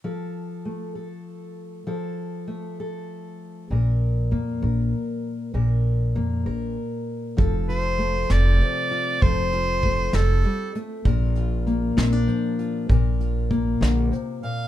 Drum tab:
HH |------|------|------|------|
SD |------|------|------|------|
BD |------|------|------|------|

HH |xxxxxx|xxxxxx|xxxxxx|xxxxxx|
SD |---o--|---o--|---o--|---o--|
BD |o-----|o-o---|o-----|o-o---|